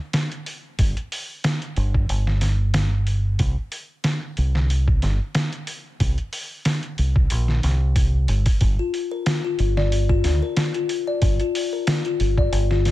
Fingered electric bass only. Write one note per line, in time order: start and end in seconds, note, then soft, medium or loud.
0.79 0.94 G1 medium
1.77 2.06 G1 medium
2.09 3.37 G1 medium
3.40 3.55 C2 medium
4.38 5.00 C2 medium
5.03 5.18 G1 medium
6.01 6.16 C2 medium
6.99 7.27 C2 medium
7.31 7.60 A#1 medium
7.64 8.26 C2 medium
8.29 8.44 G1 loud
8.61 8.77 G1 medium
9.59 10.21 G1 medium
10.24 10.40 D2 medium
11.22 11.38 G1 medium
12.20 12.49 G1 medium
12.52 12.91 G1 medium